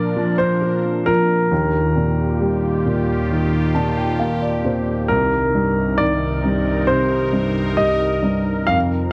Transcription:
Already playing: upright piano A#2 F3 A#3 D4, analog synth pad A#2 F3 D4 A#4, grand piano D5
0.16 upright piano F3
0.38 grand piano C5
0.62 upright piano F4
1.06 upright piano F3, grand piano A#4
1.51 upright piano D#2, analog synth pad D#2 D#3 F4 G4
1.96 upright piano A#2
2.41 upright piano G3
2.86 upright piano A#2
3.30 upright piano D#3
3.75 upright piano A#2 A5
3.97 upright piano G5
4.20 upright piano A#3 F5
4.42 upright piano D5
4.64 upright piano A#2 C5
5.08 analog synth pad C2 C3 D#4 A#4, upright piano C2, grand piano A#4
5.55 upright piano G2
5.98 upright piano D#3, grand piano D5
6.44 upright piano G2
6.87 upright piano C3, grand piano C5
7.33 upright piano G2
7.77 upright piano G3, grand piano D#5
8.23 upright piano G2
8.67 upright piano F2, analog synth pad F2 F3 C4, grand piano F5

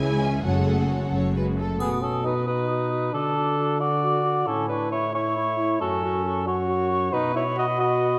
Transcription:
Already playing: cello section C#2, double bass section C#2, trombone section C#3 E3, french horn section G#3 G#4, violin section G#5
0.00 viola section E3 E4, violin section E4 C#5
0.22 viola section G#3 C#4, violin section G#4 E5
0.44 double bass section F#1, cello section F#2, trombone section C#3 F#3, viola section G#3 F#4, french horn section A3 G#4, violin section A4 C#5 F#5
0.66 viola section A3 A4, violin section G#4 A4
0.89 viola section G#3 F#4, violin section A4 C#5
1.12 double bass section F#1, cello section F#2, viola section A3 A4, violin section C#5
1.33 viola section G#3 F#4, violin section B4
1.57 viola section A3 A4, violin section A4
1.79 trombone section B2, trumpet B3, clarinet F#4, cor anglais G#4, flute D#6, triangle
2.02 trumpet C#4, clarinet F#4, cor anglais A4, flute D#6
2.24 trumpet D#4, clarinet F#4, cor anglais B4, flute D#6
2.45 trumpet D#4, clarinet F#4, cor anglais B4, flute D#6
2.67 clarinet F#4, flute D#6
2.90 clarinet F#4, flute D#6
3.13 trombone section D3, trumpet D4, clarinet F#4, cor anglais A4, flute D6
3.37 clarinet F#4, flute D6
3.58 clarinet F#4, flute D6
3.80 trumpet F#4, clarinet F#4, cor anglais D5, flute D6
4.03 clarinet F#4, flute D6
4.25 clarinet F#4, flute D6
4.47 trombone section A2, trumpet C#4, clarinet E4, cor anglais A4, flute C#6
4.69 trumpet D4, clarinet E4, cor anglais B4, flute C#6
4.91 trumpet E4, clarinet E4, cor anglais C#5, flute C#6
5.13 trumpet E4, clarinet E4, cor anglais C#5, flute C#6
5.37 clarinet E4, flute C#6
5.58 clarinet E4, flute C#6
5.80 trombone section F#2, trumpet C#4, clarinet F#4, cor anglais A4, flute C#6
6.03 clarinet F#4, flute C#6
6.25 clarinet F#4, flute C#6
6.46 clarinet F#4, trumpet F#4, cor anglais C#5, flute C#6
6.67 clarinet F#4, flute C#6
6.91 clarinet F#4, flute C#6
7.12 trombone section B2, trumpet D#4, clarinet F#4, cor anglais B4, flute B5
7.34 trumpet E4, cor anglais C#5
7.57 trumpet F#4, cor anglais D#5
7.78 trumpet F#4, cor anglais D#5

